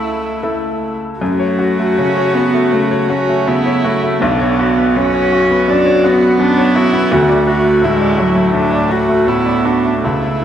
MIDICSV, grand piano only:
0, 0, Header, 1, 2, 480
1, 0, Start_track
1, 0, Key_signature, 3, "minor"
1, 0, Tempo, 767263
1, 755, Time_signature, 4, 2, 24, 8
1, 1230, Tempo, 748130
1, 2670, Tempo, 734394
1, 3630, Tempo, 713436
1, 5550, Tempo, 753769
1, 6768, End_track
2, 0, Start_track
2, 0, Title_t, "Grand piano"
2, 0, Program_c, 0, 0
2, 0, Control_c, 0, 64, 127
2, 0, Note_on_c, 0, 37, 58
2, 0, Note_on_c, 0, 57, 41
2, 0, Note_on_c, 0, 64, 39
2, 0, Note_on_c, 0, 69, 45
2, 241, Note_off_c, 0, 57, 0
2, 242, Note_off_c, 0, 64, 0
2, 243, Note_off_c, 0, 69, 0
2, 269, Note_on_c, 0, 57, 38
2, 271, Note_on_c, 0, 64, 39
2, 271, Note_on_c, 0, 69, 44
2, 728, Note_off_c, 0, 57, 0
2, 729, Note_off_c, 0, 64, 0
2, 729, Note_off_c, 0, 69, 0
2, 760, Note_on_c, 0, 42, 75
2, 766, Control_c, 0, 64, 0
2, 770, Note_off_c, 0, 37, 0
2, 872, Note_on_c, 0, 73, 54
2, 873, Control_c, 0, 64, 127
2, 993, Note_on_c, 0, 66, 55
2, 1063, Note_off_c, 0, 73, 0
2, 1119, Note_on_c, 0, 57, 49
2, 1183, Note_off_c, 0, 66, 0
2, 1238, Note_on_c, 0, 49, 52
2, 1307, Note_off_c, 0, 57, 0
2, 1361, Note_on_c, 0, 73, 53
2, 1429, Note_off_c, 0, 49, 0
2, 1485, Note_on_c, 0, 66, 47
2, 1550, Note_off_c, 0, 73, 0
2, 1599, Note_on_c, 0, 57, 58
2, 1671, Note_off_c, 0, 66, 0
2, 1690, Note_off_c, 0, 42, 0
2, 1716, Note_on_c, 0, 49, 57
2, 1787, Note_off_c, 0, 57, 0
2, 1836, Note_on_c, 0, 73, 59
2, 1905, Note_off_c, 0, 49, 0
2, 1955, Note_on_c, 0, 66, 53
2, 2025, Note_off_c, 0, 73, 0
2, 2079, Note_on_c, 0, 57, 50
2, 2145, Note_off_c, 0, 66, 0
2, 2197, Note_on_c, 0, 49, 50
2, 2268, Note_off_c, 0, 57, 0
2, 2315, Note_on_c, 0, 73, 54
2, 2386, Note_off_c, 0, 49, 0
2, 2435, Note_on_c, 0, 66, 61
2, 2505, Note_off_c, 0, 73, 0
2, 2554, Note_on_c, 0, 57, 59
2, 2624, Note_off_c, 0, 66, 0
2, 2672, Note_off_c, 0, 57, 0
2, 2677, Note_on_c, 0, 35, 74
2, 2682, Control_c, 0, 64, 0
2, 2772, Control_c, 0, 64, 127
2, 2800, Note_on_c, 0, 73, 59
2, 2920, Note_on_c, 0, 66, 65
2, 2987, Note_off_c, 0, 73, 0
2, 3041, Note_on_c, 0, 59, 47
2, 3107, Note_off_c, 0, 66, 0
2, 3154, Note_on_c, 0, 42, 55
2, 3228, Note_off_c, 0, 59, 0
2, 3276, Note_on_c, 0, 73, 57
2, 3345, Note_off_c, 0, 42, 0
2, 3396, Note_on_c, 0, 66, 60
2, 3465, Note_off_c, 0, 73, 0
2, 3513, Note_on_c, 0, 59, 62
2, 3585, Note_off_c, 0, 66, 0
2, 3607, Note_off_c, 0, 35, 0
2, 3632, Note_on_c, 0, 42, 65
2, 3704, Note_off_c, 0, 59, 0
2, 3748, Note_on_c, 0, 73, 64
2, 3825, Note_off_c, 0, 42, 0
2, 3873, Note_on_c, 0, 66, 62
2, 3942, Note_off_c, 0, 73, 0
2, 3990, Note_on_c, 0, 59, 57
2, 4064, Note_off_c, 0, 66, 0
2, 4112, Note_on_c, 0, 42, 60
2, 4182, Note_off_c, 0, 59, 0
2, 4234, Note_on_c, 0, 73, 68
2, 4302, Note_off_c, 0, 42, 0
2, 4357, Note_on_c, 0, 66, 66
2, 4423, Note_off_c, 0, 73, 0
2, 4473, Note_on_c, 0, 59, 66
2, 4544, Note_off_c, 0, 66, 0
2, 4590, Note_off_c, 0, 59, 0
2, 4596, Note_on_c, 0, 38, 79
2, 4601, Control_c, 0, 64, 0
2, 4714, Note_on_c, 0, 74, 60
2, 4725, Control_c, 0, 64, 127
2, 4836, Note_on_c, 0, 66, 67
2, 4903, Note_off_c, 0, 74, 0
2, 4952, Note_on_c, 0, 57, 55
2, 5024, Note_off_c, 0, 66, 0
2, 5068, Note_on_c, 0, 45, 56
2, 5142, Note_off_c, 0, 57, 0
2, 5192, Note_on_c, 0, 74, 53
2, 5260, Note_off_c, 0, 45, 0
2, 5310, Note_on_c, 0, 66, 61
2, 5382, Note_off_c, 0, 74, 0
2, 5428, Note_on_c, 0, 57, 58
2, 5501, Note_off_c, 0, 66, 0
2, 5525, Note_off_c, 0, 38, 0
2, 5547, Note_on_c, 0, 45, 57
2, 5617, Note_off_c, 0, 57, 0
2, 5664, Note_on_c, 0, 74, 53
2, 5732, Note_off_c, 0, 45, 0
2, 5779, Note_on_c, 0, 66, 58
2, 5850, Note_off_c, 0, 74, 0
2, 5903, Note_on_c, 0, 57, 55
2, 5968, Note_off_c, 0, 66, 0
2, 6022, Note_on_c, 0, 45, 52
2, 6091, Note_off_c, 0, 57, 0
2, 6140, Note_on_c, 0, 74, 52
2, 6212, Note_off_c, 0, 45, 0
2, 6262, Note_on_c, 0, 66, 55
2, 6333, Note_off_c, 0, 74, 0
2, 6389, Note_on_c, 0, 57, 42
2, 6456, Note_off_c, 0, 66, 0
2, 6508, Note_off_c, 0, 57, 0
2, 6509, Note_on_c, 0, 37, 62
2, 6515, Control_c, 0, 64, 0
2, 6607, Control_c, 0, 64, 127
2, 6628, Note_on_c, 0, 76, 44
2, 6768, Note_off_c, 0, 37, 0
2, 6768, Note_off_c, 0, 76, 0
2, 6768, End_track
0, 0, End_of_file